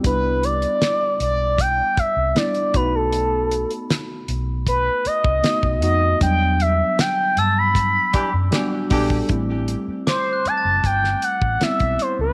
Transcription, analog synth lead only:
\new Staff \with { instrumentName = "Analog synth lead" } { \time 4/4 \key a \dorian \tempo 4 = 78 b'8 d''4 d''8 g''8 e''8 d''8 b'16 a'16~ | a'8. r4 r16 b'8 dis''4 dis''8 | g''8 e''8 g''8 a''16 b''4 r4 r16 | r4 c''8 a''8 g''8 fis''8 e''8 c''16 b'16 | }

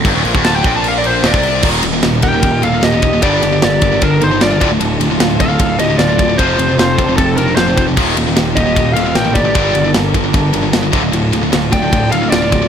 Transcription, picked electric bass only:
\new Staff \with { instrumentName = "Picked electric bass" } { \clef bass \time 4/4 \key d \phrygian \tempo 4 = 152 g,,16 d,,16 bes,,16 d,,8. bes,,4. d,,16 c,8. | ees,,8 ees,,8 ees,,8 ees,,8 ees,,8 ees,,8 ees,,4 | g,,8 g,,8 g,,8 g,,8 g,,8 g,,8 g,,8 d,,8 | d,,8 d,,8 d,,8 d,,8 d,,8 d,,8 d,,4 |
f,,8 f,,8 f,,8 f,,8 f,,8 f,,8 f,,8 f,,8 | ees,,8 ees,,8 ees,,8 ees,,8 ees,,8 ees,,8 a,,4 | g,,8 g,,8 g,,8 g,,8 g,,8 g,,8 g,,8 d,,8 | d,,8 d,,8 d,,8 d,,8 d,,8 d,,8 d,,4 | }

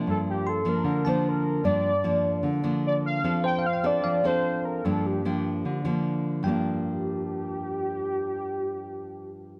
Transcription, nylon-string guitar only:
\new Staff \with { instrumentName = "Nylon-string guitar" } { \time 4/4 \key g \minor \tempo 4 = 150 << { <f bes d'>4. <f bes d'>4 <f bes d'>4. | <f bes d'>8 r8 <f bes d'>4. <f bes d'>4. | <c' d' a'>4 r8 <c' d' a'>4 <c' d' a'>4. | <f bes d'>4 <f bes d'>4. <f bes d'>4. |
<g, f bes d'>1~ | <g, f bes d'>1 | } \\ { g,2 d2 | g,2 d2 | f2 f2 | g,2 d2 |
r1 | r1 | } >> }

